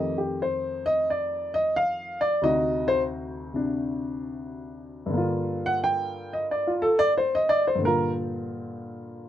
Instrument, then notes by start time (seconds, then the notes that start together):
grand piano
Already playing: F2 D#3 A3 G4 D#5
0.18 G4
0.42 C5
0.86 D#5
1.10 D5
1.54 D#5
1.76 F5
2.21 D5
2.42 D2 C3 D#4 F#4 D#5
2.88 C5
3.54 C3 D4
5.06 G2 D3
5.14 A#3 F4
5.66 F#5
5.84 G5
6.33 D#5
6.51 D5
6.67 F4
6.82 A4
6.99 D5
7.18 C5
7.35 D#5
7.49 D5
7.67 C5
7.75 G2 D3
7.83 A#2 A#4
7.87 F4